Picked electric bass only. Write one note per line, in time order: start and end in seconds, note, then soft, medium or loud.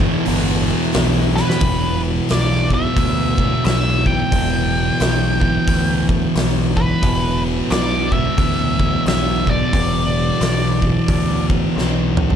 0.27 0.72 G1 loud
0.95 1.40 B1 medium
1.61 2.18 E1 medium
2.30 2.86 B1 medium
2.97 3.53 D2 medium
3.65 4.22 B1 medium
4.32 4.89 E1 medium
5.01 5.57 B1 medium
5.68 6.24 D2 medium
6.35 6.92 B1 medium
7.03 7.60 E1 loud
7.71 8.27 B1 medium
8.38 8.95 D2 medium
9.06 9.62 B1 medium
9.73 10.30 E1 loud
10.41 10.98 B1 medium
11.09 11.65 D2 medium
11.76 12.33 B1 medium